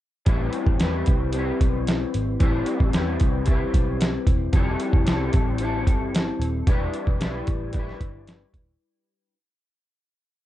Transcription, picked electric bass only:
0.27 0.48 A1 medium
0.67 0.78 A1 medium
0.81 1.02 E2 medium
1.07 1.50 C2 medium
1.61 2.03 B1 medium
2.15 2.36 G#1 medium
2.40 2.62 A1 medium
2.80 2.91 A1 medium
2.95 3.16 E2 medium
3.21 3.63 C2 medium
3.74 4.16 B1 medium
4.27 4.48 E1 medium
4.53 4.74 F1 loud
4.93 5.04 F1 medium
5.07 5.28 C2 medium
5.34 5.87 A1 medium
5.87 6.29 G1 medium
6.40 6.61 D#1 medium
6.67 6.88 E1 medium
7.07 7.17 E1 medium
7.20 7.41 B1 medium
7.48 7.90 A1 medium
8.01 8.43 G1 medium
8.53 8.75 D#1 medium

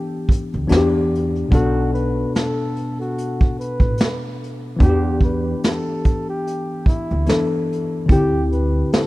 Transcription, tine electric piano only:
0.00 0.64 E3 medium
0.00 0.65 B3 medium
0.00 0.66 D4 medium
0.00 0.67 G4 medium
0.67 1.51 E3 medium
0.67 1.49 B3 medium
0.67 1.51 D4 medium
0.67 0.78 F#4 medium
0.77 1.55 G4 medium
1.48 4.75 B2 medium
1.48 4.76 B3 medium
1.53 4.77 D4 medium
1.53 4.78 A4 medium
4.77 7.21 E3 medium
4.77 7.22 B3 medium
4.81 7.23 D4 medium
4.81 4.89 F#4 medium
4.89 7.27 G4 medium
7.26 8.08 E3 soft
7.26 8.09 B3 soft
7.26 8.09 D4 soft
7.26 8.10 A4 medium
8.06 9.07 D3 medium
8.06 9.07 C4 medium
8.10 9.07 E4 medium
8.10 9.07 G4 medium

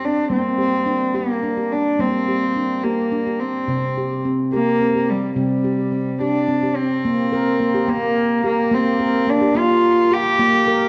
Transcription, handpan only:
0.00 0.16 G4 medium
0.30 1.96 G3 medium
0.30 0.58 A#3 medium
0.58 0.87 G4 medium
0.86 1.15 D4 medium
1.15 1.43 G4 medium
1.43 1.57 D4 medium
1.57 1.85 G4 medium
1.99 3.65 G3 medium
1.99 2.28 A#3 medium
2.29 2.56 G4 medium
2.56 2.84 D4 medium
2.84 3.12 G4 medium
3.12 3.26 D4 medium
3.27 3.55 G4 medium
3.68 5.33 C3 medium
3.68 3.97 C4 medium
3.98 4.25 G4 medium
4.25 4.53 C4 medium
4.53 4.81 G4 medium
4.81 4.95 C4 medium
4.95 5.23 G4 medium
5.36 7.01 C3 medium
5.36 5.65 C4 medium
5.65 5.93 G4 medium
5.92 6.21 C4 medium
6.21 6.49 G4 medium
6.48 6.63 C4 medium
6.63 6.91 G4 medium
7.05 7.33 A#3 medium
7.33 7.61 A#4 medium
7.61 7.75 A#3 medium
7.75 7.89 G4 medium
7.88 8.16 A#3 medium
8.44 8.73 G4 medium
8.72 9.00 A#3 medium
9.00 9.28 A#4 medium
9.27 9.42 A#3 medium
9.41 9.56 G4 medium
9.55 9.84 A#3 medium
10.11 10.40 G4 medium
10.39 10.67 A#3 medium
10.67 10.89 A#4 medium

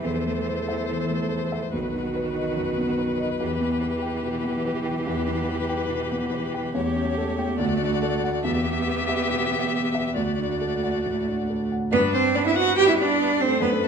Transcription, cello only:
0.00 1.69 E3 medium
1.73 3.37 D#3 soft
3.40 6.71 E3 medium
6.74 8.40 A3 medium
8.45 10.13 B3 medium
10.18 11.69 A3 medium
11.93 12.01 B3 medium
12.14 12.37 C4 medium
12.36 12.46 D4 medium
12.47 12.56 E4 medium
12.57 12.77 F#4 medium
12.77 12.88 G4 medium
12.89 12.93 E4 medium
12.98 13.42 D4 medium
13.41 13.61 C4 medium
13.61 13.69 B3 medium
13.83 13.88 A3 medium

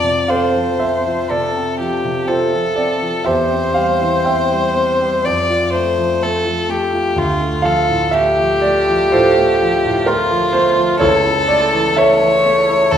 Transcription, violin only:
0.00 0.31 D5 medium
0.29 1.32 C5 soft
1.30 1.79 A4 medium
1.80 2.29 G4 soft
2.28 3.27 A4 medium
3.25 5.26 C5 medium
5.25 5.72 D5 medium
5.73 6.24 C5 medium
6.22 6.71 A4 medium
6.70 7.20 G4 medium
7.18 7.67 F4 medium
7.65 8.15 A4 medium
8.14 10.09 G4 medium
10.07 11.00 F4 medium
11.01 12.00 A4 medium
11.98 12.93 C#5 medium
12.92 12.98 A4 medium

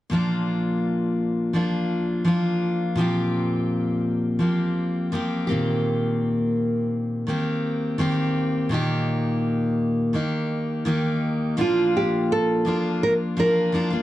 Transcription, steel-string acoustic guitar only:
0.09 1.54 A#2 medium
0.09 1.53 F3 medium
0.09 1.53 A#3 medium
0.09 1.54 D4 medium
0.14 1.56 F4 medium
1.53 2.24 F3 soft
1.53 2.24 A#3 soft
1.53 2.25 D4 medium
1.53 2.27 F4 medium
2.25 2.97 F3 medium
2.25 2.97 A#3 medium
2.25 2.98 D4 medium
2.25 3.00 F4 medium
2.96 4.40 A#2 medium
2.96 4.38 F3 medium
2.96 4.39 A#3 medium
2.96 4.41 C4 medium
3.01 4.42 G4 medium
4.39 5.11 F3 soft
4.39 5.12 A#3 soft
4.39 5.13 C4 medium
4.39 5.15 G4 soft
5.12 5.48 F3 medium
5.12 5.49 A#3 medium
5.12 5.48 C4 medium
5.12 5.46 G4 medium
5.47 7.26 D#3 medium
5.47 7.28 A#3 medium
5.47 7.28 C4 medium
5.47 7.29 G4 medium
5.52 7.29 A#2 soft
7.27 7.98 D#3 medium
7.27 7.99 A#3 soft
7.27 7.99 C4 medium
7.27 8.01 G4 medium
7.98 8.70 D#3 medium
7.98 8.72 A#3 medium
7.98 8.72 C4 medium
7.98 8.73 G4 medium
8.69 10.14 A#2 medium
8.69 10.12 D#3 medium
8.69 10.14 A#3 medium
8.69 10.14 D#4 medium
8.74 10.15 G4 medium
10.13 10.84 D#3 soft
10.13 10.86 A#3 medium
10.13 10.86 D#4 medium
10.13 10.87 G4 soft
10.85 11.57 D#3 medium
10.85 11.58 A#3 medium
10.85 11.58 D#4 medium
10.85 11.58 G4 medium
11.57 12.65 A#2 medium
11.57 12.64 F3 medium
11.57 12.65 A#3 medium
11.57 12.66 D4 medium
11.57 12.68 F4 medium
12.65 13.36 F3 medium
12.65 13.37 A#3 medium
12.65 13.38 D4 medium
12.65 13.39 F4 medium
13.37 13.71 F3 medium
13.37 13.73 A#3 medium
13.37 13.73 D4 medium
13.37 13.74 F4 medium
13.72 13.91 F3 medium
13.72 13.91 A#3 medium
13.72 13.91 D4 medium
13.72 13.89 F4 medium
13.90 14.02 A#3 soft
13.90 14.02 D4 soft
13.90 14.02 F4 soft

